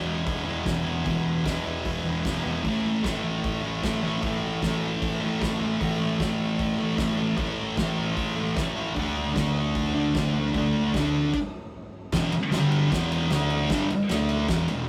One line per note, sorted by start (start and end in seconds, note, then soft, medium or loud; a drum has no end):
0.00 0.64 E2 medium
0.00 0.49 B2 medium
0.00 0.45 E3 medium
0.00 2.59 B4 medium
0.00 2.60 E5 medium
0.00 2.61 G#5 medium
0.06 0.23 E1 medium
0.27 0.43 E1 medium
0.27 kick loud
0.27 open hi-hat medium
0.45 0.62 E1 medium
0.45 0.69 E3 medium
0.50 0.67 B2 medium
0.65 0.83 E1 medium
0.65 1.03 E2 medium
0.65 0.88 B2 medium
0.65 kick loud
0.65 snare loud
0.65 open hi-hat medium
0.70 0.83 E3 medium
0.84 1.02 E1 medium
0.84 1.09 E3 medium
0.89 1.06 B2 medium
1.05 1.22 E1 loud
1.05 1.43 E2 medium
1.05 1.45 B2 medium
1.05 kick medium
1.05 open hi-hat soft
1.10 1.48 E3 loud
1.26 1.42 E1 medium
1.44 1.62 E1 loud
1.44 2.23 E2 medium
1.44 2.08 B2 medium
1.44 kick loud
1.44 snare loud
1.44 open hi-hat medium
1.49 2.04 E3 medium
1.65 1.82 E1 medium
1.85 2.01 E1 medium
1.85 kick loud
1.85 open hi-hat medium
2.04 2.21 E1 medium
2.04 2.28 E3 medium
2.09 2.26 B2 medium
2.24 2.41 E1 medium
2.24 2.63 E2 medium
2.24 2.47 B2 medium
2.24 kick loud
2.24 snare loud
2.24 open hi-hat medium
2.29 2.43 E3 loud
2.44 2.61 E1 medium
2.44 2.66 E3 medium
2.49 2.63 B2 medium
2.63 2.81 A1 loud
2.63 3.03 A2 loud
2.63 3.06 E3 medium
2.63 5.76 C#5 medium
2.63 5.77 E5 medium
2.63 5.78 A5 medium
2.63 kick medium
2.63 open hi-hat soft
2.69 3.08 A3 loud
2.86 3.01 A1 medium
3.04 3.20 A1 medium
3.04 3.82 A2 medium
3.04 3.65 E3 medium
3.04 kick loud
3.04 snare loud
3.04 open hi-hat medium
3.08 3.61 A3 medium
3.24 3.40 A1 medium
3.44 3.60 A1 medium
3.44 kick loud
3.44 open hi-hat medium
3.61 3.79 A1 medium
3.61 3.86 A3 medium
3.66 3.84 E3 medium
3.82 3.99 A1 medium
3.82 4.21 A2 medium
3.82 4.07 E3 medium
3.82 kick loud
3.82 snare loud
3.82 open hi-hat medium
3.86 4.02 A3 loud
4.02 4.19 A1 medium
4.02 4.26 A3 medium
4.07 4.24 E3 medium
4.22 4.39 A1 loud
4.22 4.62 A2 medium
4.22 4.64 E3 loud
4.22 kick loud
4.22 open hi-hat medium
4.26 4.66 A3 loud
4.43 4.59 A1 medium
4.62 4.79 A1 medium
4.62 5.40 A2 medium
4.62 5.25 E3 medium
4.62 kick loud
4.62 snare loud
4.62 open hi-hat medium
4.67 5.20 A3 medium
4.82 4.98 A1 medium
5.02 5.18 A1 medium
5.02 kick loud
5.02 open hi-hat medium
5.20 5.38 A1 medium
5.20 5.44 A3 medium
5.25 5.42 E3 medium
5.41 5.57 A1 medium
5.41 5.79 A2 medium
5.41 5.64 E3 medium
5.41 kick loud
5.41 snare loud
5.41 open hi-hat medium
5.45 5.60 A3 loud
5.60 5.77 A1 medium
5.60 5.84 A3 medium
5.64 5.82 E3 medium
5.80 5.97 A1 medium
5.80 6.19 A2 medium
5.80 6.22 E3 loud
5.80 8.92 C#5 medium
5.80 8.93 E5 medium
5.80 kick medium
5.80 open hi-hat medium
5.84 6.23 A3 loud
5.84 8.94 A5 medium
6.01 6.17 A1 medium
6.19 6.36 A1 medium
6.19 6.96 A2 medium
6.19 6.81 E3 medium
6.19 kick loud
6.19 snare loud
6.19 open hi-hat medium
6.24 6.78 A3 medium
6.39 6.56 A1 medium
6.59 6.76 A1 medium
6.59 kick loud
6.59 open hi-hat medium
6.78 6.95 A1 medium
6.78 7.01 A3 medium
6.82 6.98 E3 medium
6.97 7.15 A1 medium
6.97 7.35 A2 medium
6.97 7.20 E3 loud
6.97 kick loud
6.97 snare loud
6.97 open hi-hat medium
7.02 7.17 A3 loud
7.17 7.34 A1 medium
7.17 7.41 A3 medium
7.22 7.38 E3 medium
7.36 7.54 A1 loud
7.36 7.76 A2 loud
7.36 7.78 E3 loud
7.36 kick loud
7.36 open hi-hat soft
7.41 7.82 A3 loud
7.58 7.74 A1 medium
7.77 7.94 A1 medium
7.77 8.55 A2 medium
7.77 8.39 E3 medium
7.77 kick loud
7.77 snare loud
7.77 open hi-hat medium
7.82 8.35 A3 medium
7.99 8.14 A1 medium
8.17 8.33 A1 medium
8.17 kick loud
8.17 open hi-hat medium
8.36 8.53 A1 medium
8.36 8.60 A3 medium
8.41 8.57 E3 medium
8.56 8.73 A1 medium
8.56 8.94 A2 medium
8.56 8.79 E3 loud
8.56 kick loud
8.56 snare loud
8.56 open hi-hat medium
8.61 8.75 A3 medium
8.76 8.96 A1 medium
8.76 8.97 A3 medium
8.80 8.97 E3 soft
8.95 9.12 D2 loud
8.95 9.33 D3 medium
8.95 9.36 A3 loud
8.95 11.29 D5 medium
8.95 11.30 F#5 medium
8.95 11.30 A5 medium
8.95 kick medium
8.95 open hi-hat medium
8.99 9.38 D4 medium
9.15 9.32 D2 medium
9.34 9.52 D2 loud
9.34 10.13 D3 medium
9.34 9.98 A3 medium
9.34 kick loud
9.34 snare loud
9.34 open hi-hat medium
9.39 9.93 D4 medium
9.55 9.71 D2 medium
9.75 9.91 D2 loud
9.75 kick loud
9.75 open hi-hat medium
9.94 10.11 D2 loud
9.94 10.17 D4 medium
9.99 10.15 A3 medium
10.14 10.31 D2 medium
10.14 10.51 D3 medium
10.14 10.38 A3 loud
10.14 kick loud
10.14 snare loud
10.14 open hi-hat medium
10.18 10.33 D4 medium
10.34 10.50 D2 medium
10.34 10.56 D4 medium
10.39 10.54 A3 medium
10.53 10.71 D2 loud
10.53 10.92 D3 medium
10.53 10.95 A3 loud
10.53 kick loud
10.53 open hi-hat soft
10.57 10.98 D4 loud
10.75 10.91 D2 medium
10.94 11.10 D2 medium
10.94 11.32 D3 medium
10.94 11.33 A3 medium
10.94 kick loud
10.94 snare loud
10.94 open hi-hat medium
10.99 11.35 D4 medium
11.14 11.30 D2 medium
11.33 kick loud
11.33 crash medium
12.12 12.31 E1 loud
12.12 12.32 E2 medium
12.12 12.32 B2 medium
12.12 12.33 E3 medium
12.12 kick loud
12.12 snare loud
12.12 crash loud
12.32 muted picked electric bass stroke soft
12.32 muted distorted electric guitar stroke medium
12.32 ride medium
12.51 12.88 G1 loud
12.51 12.90 G2 loud
12.51 12.91 D3 loud
12.51 12.91 G3 loud
12.51 snare loud
12.51 ride loud
12.71 ride medium
12.91 13.28 E1 medium
12.91 13.30 E2 loud
12.91 13.30 B2 loud
12.91 13.31 E3 loud
12.91 kick loud
12.91 snare loud
12.91 ride medium
13.12 ride medium
13.30 13.67 D2 medium
13.30 13.70 D3 medium
13.30 13.70 A3 medium
13.30 13.71 D4 medium
13.30 snare loud
13.30 ride loud
13.50 ride medium
13.70 13.88 G1 loud
13.70 13.89 G2 loud
13.70 13.90 D3 loud
13.70 13.90 G3 loud
13.70 kick loud
13.70 snare medium
13.70 ride medium
13.90 muted distorted electric guitar stroke medium
13.90 muted picked electric bass stroke soft
13.90 ride medium
14.09 14.46 D2 loud
14.09 14.48 D3 medium
14.09 14.49 A3 loud
14.09 14.49 D4 loud
14.09 snare loud
14.09 ride loud
14.29 ride medium
14.48 14.66 E1 loud
14.48 14.67 E2 loud
14.48 14.68 B2 medium
14.48 14.68 E3 loud
14.48 kick loud
14.48 snare loud
14.48 ride loud
14.68 14.87 E1 medium
14.68 14.84 E2 medium
14.68 14.84 B2 medium
14.68 ride medium